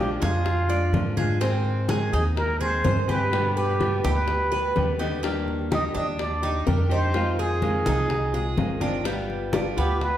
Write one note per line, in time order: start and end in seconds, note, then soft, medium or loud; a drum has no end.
0.00 0.16 A#1 medium
0.00 0.20 F3 medium
0.00 0.21 G#3 medium
0.00 0.20 D4 medium
0.00 0.19 F4 medium
0.00 0.20 D5 medium
0.20 0.90 F2 medium
0.20 0.44 G#3 soft
0.20 0.44 D4 soft
0.20 0.44 F4 soft
0.20 1.14 F4 medium
0.20 0.68 G#4 medium
0.20 high bongo soft
0.20 high conga medium
0.45 muted nylon-string guitar stroke medium
0.45 high bongo medium
0.45 high conga soft
0.68 0.92 G#3 soft
0.68 0.92 D4 soft
0.68 0.92 F4 soft
0.68 1.16 D5 medium
0.68 high bongo soft
0.68 high conga soft
0.92 2.06 G#2 medium
0.92 1.16 F3 soft
0.92 1.16 G#3 soft
0.92 1.17 D4 soft
0.92 1.16 F4 soft
0.92 high bongo soft
0.92 low bongo medium
0.92 high conga medium
1.17 1.40 G#3 medium
1.17 1.41 D4 medium
1.17 1.40 F4 medium
1.17 1.41 G#4 medium
1.17 high bongo soft
1.17 high conga medium
1.40 1.87 D#3 medium
1.40 1.88 G#3 medium
1.40 1.88 C4 medium
1.40 1.88 G#4 medium
1.40 high bongo medium
1.40 high conga soft
1.65 high conga soft
1.89 2.12 D#3 medium
1.89 2.12 G#3 medium
1.89 2.13 C4 medium
1.89 2.12 G#4 medium
1.89 high bongo medium
1.89 high conga medium
2.13 2.81 D#2 medium
2.13 2.36 G#3 soft
2.13 2.36 C4 soft
2.13 2.60 D#4 medium
2.13 2.36 G#4 soft
2.13 2.24 G#4 medium
2.13 high bongo soft
2.13 high conga soft
2.36 2.63 A#4 medium
2.36 muted nylon-string guitar stroke medium
2.36 high bongo medium
2.36 high conga soft
2.61 2.83 G#3 soft
2.61 2.83 C4 soft
2.61 2.84 G#4 soft
2.61 2.84 G#4 medium
2.61 3.11 C5 loud
2.61 high bongo soft
2.61 high conga soft
2.84 3.98 G2 medium
2.84 3.07 D#3 soft
2.84 3.08 G#3 soft
2.84 3.08 C4 soft
2.84 3.07 G#4 medium
2.84 3.08 C5 medium
2.84 high bongo soft
2.84 low bongo medium
2.84 high conga medium
3.08 3.32 G#3 medium
3.08 3.32 C4 medium
3.08 3.55 G4 medium
3.08 3.31 G#4 medium
3.08 3.58 B4 medium
3.08 high bongo soft
3.08 high conga medium
3.31 3.78 B2 medium
3.31 3.79 D3 medium
3.31 3.79 G3 medium
3.31 3.79 B3 medium
3.31 3.80 G4 medium
3.31 high bongo medium
3.31 high conga soft
3.57 4.07 G4 medium
3.57 4.03 B4 medium
3.57 high conga soft
3.79 4.03 B2 medium
3.79 4.03 D3 medium
3.79 4.03 G3 medium
3.79 4.03 B3 medium
3.79 4.02 G4 medium
3.79 high bongo medium
3.79 high conga medium
4.03 4.72 D2 medium
4.03 4.26 G3 soft
4.03 4.27 B3 soft
4.03 4.27 G4 soft
4.03 4.51 G4 medium
4.03 5.01 B4 medium
4.03 high bongo soft
4.03 high conga medium
4.27 muted nylon-string guitar stroke medium
4.27 high bongo medium
4.27 high conga soft
4.52 4.75 G3 soft
4.52 4.75 B3 soft
4.52 4.75 G4 soft
4.52 4.98 B4 medium
4.52 high bongo soft
4.52 high conga soft
4.75 5.89 D#2 medium
4.75 4.99 D3 soft
4.75 4.99 G3 soft
4.75 4.99 B3 soft
4.75 4.98 G4 medium
4.75 high bongo soft
4.75 low bongo medium
4.75 high conga medium
4.99 5.23 D3 medium
4.99 5.23 G3 medium
4.99 5.23 B3 medium
4.99 5.23 D#4 medium
4.99 5.23 G4 medium
4.99 high bongo soft
5.23 5.69 D#3 medium
5.23 5.70 G3 medium
5.23 5.70 A#3 medium
5.23 5.71 D4 medium
5.23 5.71 G4 medium
5.23 high bongo medium
5.23 high conga soft
5.48 high conga soft
5.70 5.94 D#3 medium
5.70 5.94 G3 medium
5.70 5.95 D4 medium
5.70 5.94 D#4 medium
5.70 5.94 G4 medium
5.70 high bongo medium
5.70 high conga medium
5.75 5.85 D#5 medium
5.95 6.63 D#2 medium
5.95 6.18 G3 soft
5.95 6.41 D4 medium
5.95 6.18 D4 soft
5.95 6.18 G4 soft
5.95 6.07 D#5 medium
5.95 high bongo soft
5.95 high conga soft
6.18 6.64 D5 medium
6.18 muted nylon-string guitar stroke medium
6.18 high bongo medium
6.18 high conga soft
6.42 6.65 G3 soft
6.42 6.66 D4 soft
6.42 6.66 D#4 medium
6.42 6.66 G4 soft
6.42 high bongo soft
6.42 high conga soft
6.66 7.80 F2 medium
6.66 6.89 D#3 soft
6.66 6.90 G3 soft
6.66 6.89 D4 soft
6.66 6.88 G4 medium
6.66 6.90 A#4 medium
6.66 high bongo soft
6.66 low bongo medium
6.66 high conga medium
6.89 7.14 G3 medium
6.89 7.13 D4 medium
6.89 7.37 D#4 medium
6.89 7.13 G4 medium
6.89 7.41 C5 medium
6.89 high bongo soft
7.13 7.61 C3 medium
7.13 7.61 D#3 medium
7.13 7.61 G#3 medium
7.13 7.62 C4 medium
7.13 7.62 F4 medium
7.13 high bongo medium
7.13 high conga soft
7.39 8.82 G#4 medium
7.39 7.85 G#4 medium
7.39 high conga soft
7.62 7.85 C3 medium
7.62 7.85 D#3 medium
7.62 7.85 G#3 medium
7.62 7.85 C4 medium
7.62 7.84 F4 medium
7.62 high bongo medium
7.62 high conga soft
7.86 8.54 C2 medium
7.86 8.09 G#3 soft
7.86 8.09 C4 soft
7.86 8.33 D#4 medium
7.86 8.09 F4 soft
7.86 high bongo soft
7.86 high conga medium
8.09 muted nylon-string guitar stroke medium
8.09 high bongo medium
8.09 high conga soft
8.32 8.56 G#3 soft
8.32 8.57 C4 soft
8.32 8.56 F4 soft
8.32 8.80 G#4 medium
8.32 high bongo soft
8.32 high conga soft
8.56 9.70 G1 medium
8.56 8.80 D#3 soft
8.56 8.80 G#3 soft
8.56 8.80 C4 soft
8.56 8.79 F4 medium
8.56 high bongo soft
8.56 low bongo medium
8.56 high conga medium
8.80 9.05 D#3 medium
8.80 9.03 G#3 medium
8.80 9.04 C4 medium
8.80 9.05 D4 medium
8.80 9.04 F4 medium
8.80 high bongo soft
8.80 high conga medium
9.04 9.51 G3 medium
9.04 9.52 G3 medium
9.04 9.52 B3 medium
9.04 9.52 F4 medium
9.04 high bongo medium
9.04 high conga soft
9.30 high conga soft
9.52 9.76 G3 medium
9.52 9.76 B3 medium
9.52 9.77 D4 medium
9.52 9.75 F4 medium
9.52 high bongo medium
9.52 high conga medium
9.77 10.18 D2 medium
9.77 10.18 B3 medium
9.77 10.00 B3 soft
9.77 10.00 F4 soft
9.77 10.03 G4 medium
9.77 high bongo soft
9.77 high conga soft
10.01 10.18 B4 medium
10.01 muted nylon-string guitar stroke medium
10.01 high bongo medium
10.01 high conga soft